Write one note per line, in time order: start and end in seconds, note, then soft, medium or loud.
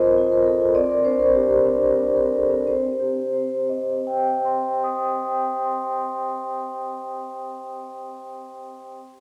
0.00 0.71 C4 medium
0.00 0.18 F4 soft
0.00 0.04 A#4 soft
0.00 0.26 A#4 soft
0.00 0.78 C5 medium
0.00 0.76 D#5 medium
0.18 0.40 F4 soft
0.32 0.55 A#4 soft
0.46 0.61 A4 soft
0.61 0.75 F4 soft
0.75 2.64 C4 medium
0.75 1.05 D5 medium
0.90 1.14 A#4 soft
1.05 1.29 D4 soft
1.05 1.35 C5 medium
1.19 1.44 A#4 soft
1.35 1.60 D4 soft
1.35 2.33 G4 medium
1.50 1.76 A#4 soft
1.66 1.92 D4 soft
1.83 2.10 A#4 soft
1.99 2.26 D4 soft
2.16 2.44 A#4 soft
2.34 2.51 A4 soft
2.51 2.68 D4 soft
2.67 6.89 C4 soft
2.67 3.32 C5 soft
3.00 7.22 G4 soft
3.33 7.55 C5 soft
3.69 7.91 D#5 soft
4.07 5.23 G5 soft
4.45 5.64 C6 soft
4.84 8.25 D#6 soft
5.24 8.25 G5 soft
5.65 8.25 C6 soft